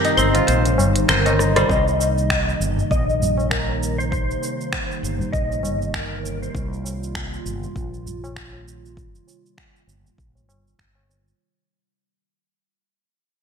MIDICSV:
0, 0, Header, 1, 7, 480
1, 0, Start_track
1, 0, Key_signature, -3, "minor"
1, 0, Tempo, 606061
1, 1342, Time_signature, 4, 2, 24, 8
1, 10634, End_track
2, 0, Start_track
2, 0, Title_t, "Electric slide guitar"
2, 0, Program_c, 0, 29
2, 0, Note_on_c, 0, 70, 88
2, 116, Note_off_c, 0, 70, 0
2, 132, Note_on_c, 0, 72, 85
2, 862, Note_on_c, 0, 70, 90
2, 1065, Note_off_c, 0, 72, 0
2, 1237, Note_off_c, 0, 70, 0
2, 1240, Note_on_c, 0, 72, 97
2, 1335, Note_off_c, 0, 72, 0
2, 1340, Note_on_c, 0, 75, 107
2, 2294, Note_off_c, 0, 75, 0
2, 2304, Note_on_c, 0, 75, 104
2, 2774, Note_on_c, 0, 70, 78
2, 2797, Note_off_c, 0, 75, 0
2, 3155, Note_on_c, 0, 72, 83
2, 3166, Note_off_c, 0, 70, 0
2, 3195, Note_off_c, 0, 72, 0
2, 3254, Note_on_c, 0, 72, 100
2, 4217, Note_on_c, 0, 75, 93
2, 4246, Note_off_c, 0, 72, 0
2, 4706, Note_on_c, 0, 70, 70
2, 4714, Note_off_c, 0, 75, 0
2, 5084, Note_off_c, 0, 70, 0
2, 5087, Note_on_c, 0, 72, 63
2, 5179, Note_off_c, 0, 72, 0
2, 10634, End_track
3, 0, Start_track
3, 0, Title_t, "Kora"
3, 0, Program_c, 1, 46
3, 0, Note_on_c, 1, 60, 87
3, 0, Note_on_c, 1, 65, 80
3, 0, Note_on_c, 1, 67, 106
3, 35, Note_on_c, 1, 63, 82
3, 134, Note_off_c, 1, 60, 0
3, 137, Note_on_c, 1, 60, 81
3, 269, Note_off_c, 1, 65, 0
3, 272, Note_on_c, 1, 65, 73
3, 372, Note_on_c, 1, 72, 84
3, 855, Note_off_c, 1, 72, 0
3, 858, Note_on_c, 1, 72, 90
3, 991, Note_off_c, 1, 63, 0
3, 994, Note_on_c, 1, 63, 74
3, 1012, Note_off_c, 1, 67, 0
3, 1237, Note_on_c, 1, 55, 80
3, 1381, Note_off_c, 1, 55, 0
3, 1471, Note_off_c, 1, 65, 0
3, 1563, Note_off_c, 1, 60, 0
3, 1799, Note_off_c, 1, 72, 0
3, 2279, Note_off_c, 1, 63, 0
3, 10634, End_track
4, 0, Start_track
4, 0, Title_t, "Ambient pad"
4, 0, Program_c, 2, 92
4, 0, Note_on_c, 2, 48, 87
4, 0, Note_on_c, 2, 51, 77
4, 0, Note_on_c, 2, 55, 80
4, 0, Note_on_c, 2, 60, 80
4, 0, Note_on_c, 2, 63, 94
4, 1309, Note_off_c, 2, 48, 0
4, 1309, Note_off_c, 2, 51, 0
4, 1309, Note_off_c, 2, 55, 0
4, 1309, Note_off_c, 2, 63, 0
4, 1310, Note_off_c, 2, 60, 0
4, 1341, Note_on_c, 2, 48, 79
4, 1342, Note_on_c, 2, 58, 72
4, 1345, Note_on_c, 2, 51, 76
4, 1345, Note_on_c, 2, 55, 74
4, 1346, Note_on_c, 2, 63, 94
4, 5152, Note_off_c, 2, 63, 0
4, 5178, Note_on_c, 2, 65, 87
4, 8988, Note_off_c, 2, 65, 0
4, 8989, Note_off_c, 2, 48, 0
4, 8990, Note_off_c, 2, 58, 0
4, 8992, Note_off_c, 2, 51, 0
4, 8992, Note_off_c, 2, 55, 0
4, 10634, End_track
5, 0, Start_track
5, 0, Title_t, "Fretless electric bass"
5, 0, Program_c, 3, 35
5, 140, Note_on_c, 3, 31, 85
5, 307, Note_off_c, 3, 31, 0
5, 383, Note_on_c, 3, 34, 102
5, 619, Note_off_c, 3, 34, 0
5, 619, Note_on_c, 3, 31, 89
5, 860, Note_off_c, 3, 31, 0
5, 864, Note_on_c, 3, 31, 95
5, 1284, Note_off_c, 3, 31, 0
5, 1341, Note_on_c, 3, 36, 94
5, 2002, Note_off_c, 3, 36, 0
5, 2061, Note_on_c, 3, 31, 83
5, 2227, Note_off_c, 3, 31, 0
5, 2304, Note_on_c, 3, 34, 95
5, 3443, Note_off_c, 3, 34, 0
5, 3984, Note_on_c, 3, 31, 84
5, 4149, Note_off_c, 3, 31, 0
5, 4224, Note_on_c, 3, 34, 92
5, 4463, Note_off_c, 3, 34, 0
5, 4463, Note_on_c, 3, 31, 84
5, 5123, Note_off_c, 3, 31, 0
5, 5184, Note_on_c, 3, 36, 94
5, 5844, Note_off_c, 3, 36, 0
5, 5905, Note_on_c, 3, 31, 75
5, 6069, Note_off_c, 3, 31, 0
5, 6144, Note_on_c, 3, 34, 96
5, 7284, Note_off_c, 3, 34, 0
5, 7820, Note_on_c, 3, 31, 74
5, 7987, Note_off_c, 3, 31, 0
5, 8064, Note_on_c, 3, 34, 82
5, 8301, Note_off_c, 3, 34, 0
5, 8301, Note_on_c, 3, 31, 81
5, 8540, Note_off_c, 3, 31, 0
5, 8545, Note_on_c, 3, 31, 87
5, 8964, Note_off_c, 3, 31, 0
5, 10634, End_track
6, 0, Start_track
6, 0, Title_t, "Tabla"
6, 139, Note_on_c, 9, 63, 40
6, 218, Note_off_c, 9, 63, 0
6, 519, Note_on_c, 9, 63, 60
6, 598, Note_off_c, 9, 63, 0
6, 617, Note_on_c, 9, 60, 66
6, 623, Note_on_c, 9, 64, 82
6, 697, Note_off_c, 9, 60, 0
6, 703, Note_off_c, 9, 64, 0
6, 999, Note_on_c, 9, 60, 72
6, 1078, Note_off_c, 9, 60, 0
6, 1103, Note_on_c, 9, 63, 62
6, 1182, Note_off_c, 9, 63, 0
6, 1338, Note_on_c, 9, 60, 39
6, 1417, Note_off_c, 9, 60, 0
6, 1574, Note_on_c, 9, 63, 51
6, 1581, Note_on_c, 9, 60, 36
6, 1653, Note_off_c, 9, 63, 0
6, 1660, Note_off_c, 9, 60, 0
6, 2192, Note_on_c, 9, 64, 92
6, 2272, Note_off_c, 9, 64, 0
6, 2548, Note_on_c, 9, 64, 84
6, 2627, Note_off_c, 9, 64, 0
6, 2673, Note_on_c, 9, 60, 64
6, 2677, Note_on_c, 9, 63, 53
6, 2752, Note_off_c, 9, 60, 0
6, 2756, Note_off_c, 9, 63, 0
6, 2921, Note_on_c, 9, 63, 68
6, 3000, Note_off_c, 9, 63, 0
6, 3501, Note_on_c, 9, 63, 50
6, 3580, Note_off_c, 9, 63, 0
6, 3987, Note_on_c, 9, 63, 33
6, 4066, Note_off_c, 9, 63, 0
6, 4111, Note_on_c, 9, 64, 98
6, 4190, Note_off_c, 9, 64, 0
6, 4350, Note_on_c, 9, 63, 59
6, 4429, Note_off_c, 9, 63, 0
6, 4460, Note_on_c, 9, 60, 64
6, 4463, Note_on_c, 9, 64, 82
6, 4539, Note_off_c, 9, 60, 0
6, 4542, Note_off_c, 9, 64, 0
6, 4935, Note_on_c, 9, 63, 58
6, 5014, Note_off_c, 9, 63, 0
6, 5186, Note_on_c, 9, 60, 34
6, 5266, Note_off_c, 9, 60, 0
6, 5418, Note_on_c, 9, 60, 29
6, 5424, Note_on_c, 9, 63, 43
6, 5498, Note_off_c, 9, 60, 0
6, 5503, Note_off_c, 9, 63, 0
6, 6048, Note_on_c, 9, 64, 91
6, 6127, Note_off_c, 9, 64, 0
6, 6384, Note_on_c, 9, 64, 76
6, 6463, Note_off_c, 9, 64, 0
6, 6524, Note_on_c, 9, 60, 65
6, 6524, Note_on_c, 9, 63, 46
6, 6603, Note_off_c, 9, 60, 0
6, 6604, Note_off_c, 9, 63, 0
6, 6753, Note_on_c, 9, 63, 58
6, 6833, Note_off_c, 9, 63, 0
6, 7345, Note_on_c, 9, 63, 44
6, 7424, Note_off_c, 9, 63, 0
6, 7820, Note_on_c, 9, 63, 29
6, 7899, Note_off_c, 9, 63, 0
6, 7955, Note_on_c, 9, 64, 82
6, 8035, Note_off_c, 9, 64, 0
6, 8200, Note_on_c, 9, 63, 47
6, 8279, Note_off_c, 9, 63, 0
6, 8306, Note_on_c, 9, 60, 57
6, 8307, Note_on_c, 9, 64, 77
6, 8385, Note_off_c, 9, 60, 0
6, 8387, Note_off_c, 9, 64, 0
6, 8675, Note_on_c, 9, 60, 54
6, 8754, Note_off_c, 9, 60, 0
6, 8789, Note_on_c, 9, 63, 52
6, 8868, Note_off_c, 9, 63, 0
6, 10634, End_track
7, 0, Start_track
7, 0, Title_t, "Drums"
7, 36, Note_on_c, 9, 42, 31
7, 44, Note_on_c, 9, 82, 29
7, 116, Note_off_c, 9, 42, 0
7, 124, Note_off_c, 9, 82, 0
7, 138, Note_on_c, 9, 75, 84
7, 146, Note_on_c, 9, 82, 72
7, 218, Note_off_c, 9, 75, 0
7, 225, Note_off_c, 9, 82, 0
7, 275, Note_on_c, 9, 42, 46
7, 283, Note_on_c, 9, 82, 32
7, 354, Note_off_c, 9, 42, 0
7, 362, Note_off_c, 9, 82, 0
7, 381, Note_on_c, 9, 42, 65
7, 389, Note_on_c, 9, 82, 45
7, 460, Note_off_c, 9, 42, 0
7, 468, Note_off_c, 9, 82, 0
7, 519, Note_on_c, 9, 42, 32
7, 527, Note_on_c, 9, 82, 30
7, 598, Note_off_c, 9, 42, 0
7, 606, Note_off_c, 9, 82, 0
7, 629, Note_on_c, 9, 82, 68
7, 708, Note_off_c, 9, 82, 0
7, 757, Note_on_c, 9, 42, 46
7, 765, Note_on_c, 9, 82, 33
7, 836, Note_off_c, 9, 42, 0
7, 844, Note_off_c, 9, 82, 0
7, 862, Note_on_c, 9, 26, 104
7, 862, Note_on_c, 9, 42, 59
7, 862, Note_on_c, 9, 75, 82
7, 870, Note_on_c, 9, 82, 46
7, 942, Note_off_c, 9, 26, 0
7, 942, Note_off_c, 9, 42, 0
7, 942, Note_off_c, 9, 75, 0
7, 950, Note_off_c, 9, 82, 0
7, 999, Note_on_c, 9, 42, 34
7, 1007, Note_on_c, 9, 82, 30
7, 1078, Note_off_c, 9, 42, 0
7, 1086, Note_off_c, 9, 82, 0
7, 1103, Note_on_c, 9, 37, 56
7, 1111, Note_on_c, 9, 82, 69
7, 1182, Note_off_c, 9, 37, 0
7, 1190, Note_off_c, 9, 82, 0
7, 1238, Note_on_c, 9, 37, 81
7, 1238, Note_on_c, 9, 42, 49
7, 1246, Note_on_c, 9, 82, 36
7, 1317, Note_off_c, 9, 37, 0
7, 1317, Note_off_c, 9, 42, 0
7, 1325, Note_off_c, 9, 82, 0
7, 1342, Note_on_c, 9, 36, 107
7, 1353, Note_on_c, 9, 82, 39
7, 1422, Note_off_c, 9, 36, 0
7, 1432, Note_off_c, 9, 82, 0
7, 1487, Note_on_c, 9, 82, 32
7, 1566, Note_off_c, 9, 82, 0
7, 1590, Note_on_c, 9, 82, 73
7, 1670, Note_off_c, 9, 82, 0
7, 1726, Note_on_c, 9, 82, 34
7, 1806, Note_off_c, 9, 82, 0
7, 1822, Note_on_c, 9, 36, 99
7, 1823, Note_on_c, 9, 26, 94
7, 1831, Note_on_c, 9, 82, 43
7, 1902, Note_off_c, 9, 36, 0
7, 1903, Note_off_c, 9, 26, 0
7, 1911, Note_off_c, 9, 82, 0
7, 1972, Note_on_c, 9, 82, 28
7, 2051, Note_off_c, 9, 82, 0
7, 2071, Note_on_c, 9, 82, 77
7, 2150, Note_off_c, 9, 82, 0
7, 2209, Note_on_c, 9, 82, 31
7, 2288, Note_off_c, 9, 82, 0
7, 2304, Note_on_c, 9, 36, 101
7, 2313, Note_on_c, 9, 82, 44
7, 2383, Note_off_c, 9, 36, 0
7, 2392, Note_off_c, 9, 82, 0
7, 2451, Note_on_c, 9, 82, 28
7, 2531, Note_off_c, 9, 82, 0
7, 2553, Note_on_c, 9, 82, 73
7, 2633, Note_off_c, 9, 82, 0
7, 2689, Note_on_c, 9, 82, 29
7, 2768, Note_off_c, 9, 82, 0
7, 2782, Note_on_c, 9, 26, 95
7, 2783, Note_on_c, 9, 36, 95
7, 2790, Note_on_c, 9, 82, 44
7, 2861, Note_off_c, 9, 26, 0
7, 2862, Note_off_c, 9, 36, 0
7, 2869, Note_off_c, 9, 82, 0
7, 3033, Note_on_c, 9, 82, 73
7, 3112, Note_off_c, 9, 82, 0
7, 3168, Note_on_c, 9, 82, 32
7, 3247, Note_off_c, 9, 82, 0
7, 3264, Note_on_c, 9, 36, 104
7, 3271, Note_on_c, 9, 82, 44
7, 3343, Note_off_c, 9, 36, 0
7, 3350, Note_off_c, 9, 82, 0
7, 3412, Note_on_c, 9, 82, 31
7, 3492, Note_off_c, 9, 82, 0
7, 3510, Note_on_c, 9, 82, 78
7, 3589, Note_off_c, 9, 82, 0
7, 3650, Note_on_c, 9, 82, 35
7, 3729, Note_off_c, 9, 82, 0
7, 3743, Note_on_c, 9, 26, 93
7, 3744, Note_on_c, 9, 36, 104
7, 3751, Note_on_c, 9, 82, 42
7, 3822, Note_off_c, 9, 26, 0
7, 3823, Note_off_c, 9, 36, 0
7, 3830, Note_off_c, 9, 82, 0
7, 3891, Note_on_c, 9, 82, 29
7, 3971, Note_off_c, 9, 82, 0
7, 3996, Note_on_c, 9, 82, 75
7, 4075, Note_off_c, 9, 82, 0
7, 4129, Note_on_c, 9, 82, 32
7, 4208, Note_off_c, 9, 82, 0
7, 4225, Note_on_c, 9, 36, 99
7, 4233, Note_on_c, 9, 82, 42
7, 4304, Note_off_c, 9, 36, 0
7, 4312, Note_off_c, 9, 82, 0
7, 4371, Note_on_c, 9, 82, 32
7, 4451, Note_off_c, 9, 82, 0
7, 4474, Note_on_c, 9, 82, 67
7, 4553, Note_off_c, 9, 82, 0
7, 4609, Note_on_c, 9, 82, 30
7, 4688, Note_off_c, 9, 82, 0
7, 4705, Note_on_c, 9, 26, 100
7, 4705, Note_on_c, 9, 36, 103
7, 4713, Note_on_c, 9, 82, 42
7, 4784, Note_off_c, 9, 26, 0
7, 4784, Note_off_c, 9, 36, 0
7, 4792, Note_off_c, 9, 82, 0
7, 4955, Note_on_c, 9, 82, 67
7, 5034, Note_off_c, 9, 82, 0
7, 5091, Note_on_c, 9, 82, 34
7, 5171, Note_off_c, 9, 82, 0
7, 5185, Note_on_c, 9, 36, 106
7, 5196, Note_on_c, 9, 82, 42
7, 5264, Note_off_c, 9, 36, 0
7, 5275, Note_off_c, 9, 82, 0
7, 5332, Note_on_c, 9, 82, 28
7, 5411, Note_off_c, 9, 82, 0
7, 5433, Note_on_c, 9, 82, 78
7, 5512, Note_off_c, 9, 82, 0
7, 5571, Note_on_c, 9, 82, 36
7, 5650, Note_off_c, 9, 82, 0
7, 5663, Note_on_c, 9, 36, 101
7, 5664, Note_on_c, 9, 26, 88
7, 5672, Note_on_c, 9, 82, 41
7, 5743, Note_off_c, 9, 36, 0
7, 5744, Note_off_c, 9, 26, 0
7, 5752, Note_off_c, 9, 82, 0
7, 5810, Note_on_c, 9, 82, 28
7, 5889, Note_off_c, 9, 82, 0
7, 5910, Note_on_c, 9, 82, 73
7, 5989, Note_off_c, 9, 82, 0
7, 6045, Note_on_c, 9, 82, 31
7, 6124, Note_off_c, 9, 82, 0
7, 6144, Note_on_c, 9, 36, 101
7, 6151, Note_on_c, 9, 82, 43
7, 6223, Note_off_c, 9, 36, 0
7, 6231, Note_off_c, 9, 82, 0
7, 6287, Note_on_c, 9, 82, 30
7, 6366, Note_off_c, 9, 82, 0
7, 6392, Note_on_c, 9, 82, 75
7, 6471, Note_off_c, 9, 82, 0
7, 6529, Note_on_c, 9, 82, 31
7, 6608, Note_off_c, 9, 82, 0
7, 6624, Note_on_c, 9, 36, 96
7, 6625, Note_on_c, 9, 26, 94
7, 6633, Note_on_c, 9, 82, 40
7, 6703, Note_off_c, 9, 36, 0
7, 6704, Note_off_c, 9, 26, 0
7, 6712, Note_off_c, 9, 82, 0
7, 6874, Note_on_c, 9, 82, 69
7, 6954, Note_off_c, 9, 82, 0
7, 7013, Note_on_c, 9, 82, 33
7, 7092, Note_off_c, 9, 82, 0
7, 7104, Note_on_c, 9, 36, 94
7, 7113, Note_on_c, 9, 82, 40
7, 7184, Note_off_c, 9, 36, 0
7, 7193, Note_off_c, 9, 82, 0
7, 7248, Note_on_c, 9, 82, 30
7, 7328, Note_off_c, 9, 82, 0
7, 7353, Note_on_c, 9, 82, 75
7, 7432, Note_off_c, 9, 82, 0
7, 7492, Note_on_c, 9, 82, 33
7, 7571, Note_off_c, 9, 82, 0
7, 7585, Note_on_c, 9, 36, 96
7, 7588, Note_on_c, 9, 26, 83
7, 7596, Note_on_c, 9, 82, 39
7, 7664, Note_off_c, 9, 36, 0
7, 7667, Note_off_c, 9, 26, 0
7, 7675, Note_off_c, 9, 82, 0
7, 7730, Note_on_c, 9, 82, 29
7, 7809, Note_off_c, 9, 82, 0
7, 7833, Note_on_c, 9, 82, 72
7, 7912, Note_off_c, 9, 82, 0
7, 7972, Note_on_c, 9, 82, 30
7, 8051, Note_off_c, 9, 82, 0
7, 8065, Note_on_c, 9, 36, 91
7, 8074, Note_on_c, 9, 82, 41
7, 8144, Note_off_c, 9, 36, 0
7, 8154, Note_off_c, 9, 82, 0
7, 8212, Note_on_c, 9, 82, 29
7, 8291, Note_off_c, 9, 82, 0
7, 8314, Note_on_c, 9, 82, 72
7, 8393, Note_off_c, 9, 82, 0
7, 8454, Note_on_c, 9, 82, 30
7, 8533, Note_off_c, 9, 82, 0
7, 8545, Note_on_c, 9, 36, 87
7, 8548, Note_on_c, 9, 26, 83
7, 8556, Note_on_c, 9, 82, 41
7, 8624, Note_off_c, 9, 36, 0
7, 8627, Note_off_c, 9, 26, 0
7, 8635, Note_off_c, 9, 82, 0
7, 8797, Note_on_c, 9, 82, 65
7, 8876, Note_off_c, 9, 82, 0
7, 8932, Note_on_c, 9, 82, 30
7, 9011, Note_off_c, 9, 82, 0
7, 10634, End_track
0, 0, End_of_file